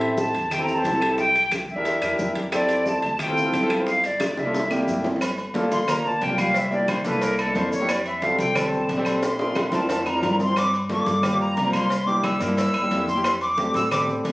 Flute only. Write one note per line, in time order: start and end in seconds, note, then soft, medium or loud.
0.00 0.16 E5 medium
0.18 0.49 A5 loud
0.52 0.64 G5 medium
0.63 0.76 A#5 medium
0.74 1.19 A5 loud
1.19 1.50 G5 loud
1.70 2.33 E5 medium
2.53 2.89 D5 loud
2.88 3.21 A5 medium
3.22 3.68 G5 medium
3.88 4.07 F5 loud
4.06 4.40 D5 medium
4.39 5.05 E5 medium
5.72 5.91 C6 loud
5.89 6.05 A#5 loud
6.06 6.25 A5 loud
6.23 6.41 G5 medium
6.39 6.59 F5 loud
6.58 6.73 E5 medium
6.73 6.90 D5 medium
6.89 7.05 C5 medium
7.05 7.24 B4 medium
7.23 7.38 A#4 medium
7.38 7.57 A4 medium
7.56 7.72 C5 medium
7.72 7.90 C#5 loud
7.89 8.05 D5 medium
8.06 8.24 E5 medium
8.23 8.39 F5 medium
8.40 8.58 G5 loud
8.57 8.90 A5 medium
9.24 9.75 C6 loud
9.74 10.09 A5 medium
10.08 10.41 A#5 loud
10.41 10.59 C6 loud
10.58 10.74 D6 loud
10.91 11.37 D6 medium
11.40 11.71 A#5 loud
11.74 12.08 C6 loud
12.07 12.26 D6 loud
12.24 12.41 E6 medium
12.58 13.04 E6 loud
13.08 13.39 C6 loud
13.41 13.72 D6 loud
13.75 13.90 E6 loud
13.92 14.02 D6 loud